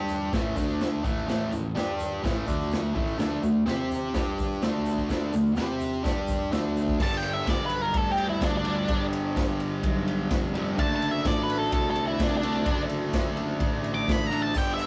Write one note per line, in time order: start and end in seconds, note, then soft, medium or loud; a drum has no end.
0.00 0.31 G2 medium
0.00 0.32 G3 medium
0.00 0.33 D4 loud
0.00 0.33 G4 loud
0.08 floor tom medium
0.08 shaker medium
0.33 0.56 A1 loud
0.33 0.56 A2 medium
0.33 0.57 E3 medium
0.33 0.56 A3 medium
0.33 kick loud
0.33 snare loud
0.33 floor tom medium
0.33 shaker medium
0.56 1.02 D2 medium
0.56 1.03 D3 medium
0.56 1.04 A3 medium
0.56 1.05 D4 loud
0.56 kick medium
0.56 floor tom medium
0.56 shaker loud
0.69 shaker soft
0.81 snare loud
0.81 floor tom medium
0.81 shaker medium
1.04 1.27 A1 medium
1.04 1.26 A2 medium
1.04 1.27 E3 loud
1.04 1.27 A3 loud
1.04 kick loud
1.04 floor tom medium
1.04 shaker medium
1.18 shaker soft
1.27 1.51 A1 medium
1.27 1.51 A2 medium
1.27 1.51 E3 medium
1.27 1.52 A3 loud
1.27 snare loud
1.27 floor tom medium
1.27 shaker medium
1.52 1.75 A1 medium
1.52 1.72 A2 medium
1.52 1.72 E3 medium
1.52 floor tom medium
1.52 shaker medium
1.75 2.21 G2 medium
1.75 2.23 G3 medium
1.75 2.23 D4 medium
1.75 2.24 G4 medium
1.75 snare loud
1.75 floor tom medium
1.75 shaker medium
1.99 floor tom medium
1.99 shaker medium
2.23 2.47 A1 loud
2.23 2.46 A2 medium
2.23 2.47 E3 loud
2.23 2.47 A3 loud
2.23 kick loud
2.23 snare loud
2.23 floor tom medium
2.23 shaker medium
2.47 2.92 D2 medium
2.47 2.94 D3 medium
2.47 2.95 A3 medium
2.47 2.95 D4 loud
2.47 kick medium
2.47 floor tom medium
2.47 shaker medium
2.61 shaker soft
2.71 snare loud
2.71 floor tom medium
2.71 shaker medium
2.95 3.18 A1 medium
2.95 3.18 A2 medium
2.95 3.19 E3 medium
2.95 3.18 A3 medium
2.95 kick loud
2.95 floor tom medium
3.08 shaker soft
3.18 3.42 D2 medium
3.18 3.42 D3 loud
3.18 3.43 A3 loud
3.18 3.43 D4 loud
3.18 snare loud
3.18 floor tom medium
3.18 shaker medium
3.43 3.66 D2 medium
3.43 3.63 D3 medium
3.43 3.63 A3 medium
3.43 floor tom medium
3.43 shaker medium
3.66 4.12 C3 loud
3.66 4.14 C4 medium
3.66 4.14 G4 medium
3.66 4.14 C5 loud
3.66 snare loud
3.66 floor tom medium
3.66 shaker medium
3.91 floor tom medium
3.91 shaker medium
4.14 4.59 G2 loud
4.14 4.62 G3 loud
4.14 4.62 D4 loud
4.14 4.62 G4 loud
4.14 kick loud
4.14 snare loud
4.14 floor tom medium
4.14 shaker medium
4.38 kick medium
4.38 floor tom medium
4.38 shaker medium
4.52 shaker soft
4.62 5.07 D2 medium
4.62 5.08 D3 medium
4.62 5.08 A3 medium
4.62 5.09 D4 loud
4.62 snare loud
4.62 floor tom medium
4.62 shaker medium
4.86 floor tom medium
4.86 shaker loud
4.98 kick medium
5.09 5.32 D2 medium
5.09 5.32 D3 medium
5.09 5.32 A3 medium
5.09 5.33 D4 loud
5.09 kick medium
5.09 snare loud
5.09 floor tom medium
5.09 shaker medium
5.33 5.56 D2 medium
5.33 5.53 D3 medium
5.33 5.56 A3 medium
5.33 floor tom medium
5.33 shaker loud
5.46 shaker soft
5.56 6.02 C3 medium
5.56 6.03 C4 medium
5.56 6.04 G4 loud
5.56 6.05 C5 loud
5.56 snare loud
5.56 floor tom medium
5.56 shaker medium
5.80 floor tom medium
5.80 shaker medium
6.03 6.50 G2 loud
6.03 6.51 G3 loud
6.03 6.51 D4 loud
6.03 6.52 G4 loud
6.03 kick loud
6.03 snare loud
6.03 floor tom medium
6.03 shaker medium
6.27 kick medium
6.27 floor tom medium
6.27 shaker medium
6.51 7.01 D2 medium
6.51 6.99 D3 medium
6.51 6.99 A3 loud
6.51 6.99 D4 loud
6.51 snare loud
6.51 floor tom medium
6.51 shaker medium
6.77 floor tom medium
6.77 shaker medium
6.88 kick medium
6.98 7.42 G1 loud
6.98 8.63 G2 medium
6.98 8.64 D3 loud
6.98 kick loud
6.98 crash loud
7.02 8.63 G3 loud
7.02 7.17 A5 loud
7.17 7.33 G5 medium
7.22 ride medium
7.33 7.48 E5 medium
7.47 7.90 B1 medium
7.47 7.64 D5 loud
7.47 kick loud
7.47 snare loud
7.47 ride loud
7.66 7.82 B4 medium
7.66 ride medium
7.82 7.97 A#4 loud
7.94 8.37 D2 loud
7.94 8.11 A4 medium
7.94 kick loud
7.94 ride loud
8.11 8.26 G4 medium
8.18 ride medium
8.29 8.43 E4 medium
8.41 8.84 D2 medium
8.41 8.56 D4 medium
8.41 kick loud
8.41 snare loud
8.41 ride loud
8.58 9.03 D4 loud
8.64 8.88 G2 medium
8.64 8.88 D3 medium
8.64 8.87 G3 loud
8.64 ride medium
8.88 9.31 G1 loud
8.88 10.53 G2 medium
8.88 10.54 D3 loud
8.88 kick loud
8.88 ride loud
8.93 10.53 G3 loud
9.13 ride medium
9.36 9.79 G1 medium
9.36 kick loud
9.36 snare loud
9.36 ride loud
9.60 ride medium
9.83 10.25 B1 loud
9.83 kick loud
9.83 ride loud
10.07 ride medium
10.30 10.73 F1 medium
10.30 kick loud
10.30 snare loud
10.30 ride loud
10.54 10.78 G2 medium
10.54 10.75 D3 medium
10.54 10.76 G3 loud
10.54 ride medium
10.76 11.20 F#1 loud
10.76 12.41 D3 medium
10.76 12.42 A3 loud
10.76 10.94 A5 loud
10.76 kick loud
10.76 ride loud
10.80 12.41 D4 loud
10.96 11.10 A5 medium
11.02 ride medium
11.11 11.26 E5 medium
11.25 11.67 A1 loud
11.25 11.41 D5 loud
11.25 kick loud
11.25 snare loud
11.25 ride loud
11.43 11.58 B4 loud
11.50 ride medium
11.58 11.72 A4 medium
11.72 12.14 C2 loud
11.72 11.88 A4 medium
11.72 kick loud
11.72 ride loud
11.90 12.04 A4 loud
11.96 ride medium
12.07 12.21 E4 loud
12.19 12.61 C2 medium
12.19 12.36 D4 medium
12.19 kick loud
12.19 snare loud
12.19 ride loud
12.37 12.82 D4 loud
12.42 12.64 D3 medium
12.42 12.66 A3 medium
12.42 12.69 D4 medium
12.42 ride medium
12.65 13.08 F#1 medium
12.65 14.30 D3 medium
12.65 14.31 A3 loud
12.65 kick loud
12.65 ride loud
12.70 14.30 D4 loud
12.89 ride medium
13.13 13.56 F#1 medium
13.13 kick loud
13.13 snare loud
13.13 ride loud
13.37 ride medium
13.60 14.03 A1 loud
13.60 kick loud
13.60 ride loud
13.84 ride medium
13.94 14.12 D6 loud
14.08 14.50 A1 medium
14.08 kick loud
14.08 snare loud
14.08 ride loud
14.12 14.27 B5 loud
14.27 14.41 A#5 loud
14.31 14.55 A3 medium
14.31 14.87 D4 medium
14.31 ride medium
14.35 14.55 D3 medium
14.43 14.56 A5 medium
14.54 14.87 G1 medium
14.54 14.87 G2 medium
14.54 14.87 D3 medium
14.54 14.87 G3 loud
14.54 kick loud
14.54 crash loud
14.54 shaker loud
14.58 14.72 G5 loud
14.74 14.87 E5 loud
14.78 ride medium
14.78 shaker medium